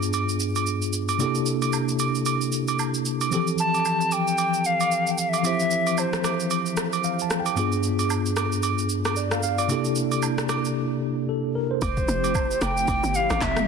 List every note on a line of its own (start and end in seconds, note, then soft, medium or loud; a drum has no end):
0.00 1.15 G2 medium
0.00 1.15 B3 medium
0.00 1.16 D4 medium
0.00 1.16 F4 medium
0.00 1.17 G#4 medium
0.00 shaker medium
0.13 high agogo medium
0.13 shaker medium
0.29 shaker medium
0.40 shaker medium
0.56 high agogo medium
0.56 shaker medium
0.67 shaker medium
0.82 shaker soft
0.93 shaker medium
1.09 high agogo medium
1.09 shaker medium
1.18 3.27 C3 medium
1.18 3.28 A#3 medium
1.18 3.28 D4 medium
1.18 3.29 E4 medium
1.18 3.29 G4 medium
1.18 3.29 A4 medium
1.18 high agogo medium
1.18 shaker medium
1.35 shaker soft
1.46 shaker medium
1.62 high agogo medium
1.62 shaker soft
1.73 low woodblock medium
1.73 shaker medium
1.89 shaker soft
1.99 high agogo medium
1.99 shaker medium
2.15 shaker soft
2.26 high agogo medium
2.26 shaker medium
2.41 shaker medium
2.52 shaker medium
2.68 high agogo medium
2.68 shaker medium
2.79 low woodblock medium
2.79 shaker medium
2.94 shaker medium
3.05 shaker medium
3.21 high agogo medium
3.21 shaker medium
3.31 5.41 E3 medium
3.31 5.40 F3 medium
3.31 5.40 C4 medium
3.31 5.41 G4 medium
3.31 5.42 A4 medium
3.31 high agogo medium
3.31 shaker medium
3.47 shaker soft
3.58 4.15 A5 loud
3.58 shaker medium
3.74 high agogo medium
3.74 shaker soft
3.85 low woodblock medium
3.85 shaker medium
4.01 shaker soft
4.12 4.68 G5 loud
4.12 high agogo medium
4.12 shaker medium
4.28 shaker medium
4.38 high agogo medium
4.38 shaker medium
4.54 shaker medium
4.65 5.12 F5 loud
4.65 shaker medium
4.80 high agogo medium
4.80 shaker medium
4.92 shaker medium
5.07 shaker soft
5.11 5.20 G5 medium
5.18 5.31 F5 medium
5.18 shaker medium
5.29 5.39 E5 medium
5.34 high agogo medium
5.34 shaker medium
5.38 5.47 F5 medium
5.43 7.52 F3 medium
5.43 7.53 C4 medium
5.43 7.53 E4 medium
5.43 7.54 G4 medium
5.43 7.54 C5 medium
5.43 6.01 E5 loud
5.43 high agogo medium
5.43 shaker medium
5.60 shaker soft
5.71 shaker medium
5.87 high agogo medium
5.87 shaker soft
5.98 6.52 C5 medium
5.98 low woodblock medium
5.98 shaker medium
6.13 cross-stick medium
6.13 shaker soft
6.24 cross-stick medium
6.24 high agogo medium
6.24 shaker loud
6.40 shaker medium
6.51 high agogo medium
6.51 shaker medium
6.66 shaker medium
6.77 cross-stick loud
6.77 shaker medium
6.93 high agogo medium
6.93 shaker medium
7.04 7.21 F5 medium
7.04 shaker medium
7.19 7.38 A5 medium
7.19 shaker medium
7.30 cross-stick medium
7.30 shaker medium
7.40 7.56 G5 medium
7.46 high agogo medium
7.46 shaker medium
7.55 9.65 G2 medium
7.55 9.65 B3 medium
7.55 9.66 D4 medium
7.55 9.66 F4 medium
7.55 9.67 G#4 medium
7.55 high agogo medium
7.55 shaker medium
7.72 shaker soft
7.83 shaker medium
7.99 high agogo medium
7.99 shaker medium
8.10 low woodblock medium
8.10 shaker medium
8.26 shaker soft
8.37 cross-stick medium
8.37 high agogo medium
8.37 shaker medium
8.52 shaker medium
8.63 high agogo medium
8.63 shaker medium
8.78 shaker medium
8.89 shaker medium
9.05 cross-stick medium
9.05 high agogo medium
9.05 shaker medium
9.16 9.31 D5 medium
9.16 shaker medium
9.31 9.42 F5 medium
9.31 cross-stick medium
9.31 shaker medium
9.43 9.58 F5 medium
9.43 shaker medium
9.58 9.84 D5 medium
9.58 high agogo medium
9.58 shaker medium
9.68 11.25 C3 medium
9.68 11.25 A#3 medium
9.68 11.26 D4 medium
9.68 11.26 E4 medium
9.68 11.26 G4 medium
9.68 11.27 A4 medium
9.68 high agogo medium
9.68 shaker medium
9.85 shaker soft
9.96 shaker medium
10.12 high agogo medium
10.12 shaker medium
10.22 low woodblock medium
10.22 shaker medium
10.38 cross-stick medium
10.38 shaker soft
10.49 cross-stick medium
10.49 high agogo medium
10.49 shaker medium
10.65 shaker medium
11.29 11.54 A4 medium
11.55 11.70 A#4 medium
11.71 11.96 C5 medium
11.82 12.06 F1 loud
11.82 13.68 F3 medium
11.82 13.68 A3 medium
11.82 13.68 C4 medium
11.82 13.68 E4 medium
11.82 13.68 G4 medium
11.82 12.64 C5 loud
11.82 kick loud
11.82 high agogo medium
11.82 shaker medium
11.97 kick loud
11.97 shaker soft
12.08 12.57 F1 loud
12.08 shaker medium
12.24 high agogo medium
12.24 shaker medium
12.35 kick medium
12.35 low woodblock medium
12.35 shaker medium
12.51 shaker soft
12.61 12.86 F1 loud
12.61 13.17 G5 loud
12.61 cross-stick loud
12.61 high agogo medium
12.61 shaker loud
12.77 shaker medium
12.88 13.02 F1 loud
12.88 kick loud
12.88 high agogo medium
12.88 shaker medium
13.03 13.28 G1 medium
13.03 shaker medium
13.14 13.44 F5 loud
13.14 shaker medium
13.30 13.40 A1 medium
13.30 cross-stick loud
13.30 high agogo medium
13.30 shaker medium
13.41 13.66 F1 loud
13.41 13.68 E5 loud
13.41 kick loud
13.41 clap loud
13.41 low woodblock medium
13.41 shaker medium
13.56 cross-stick loud
13.56 mid tom loud
13.56 shaker medium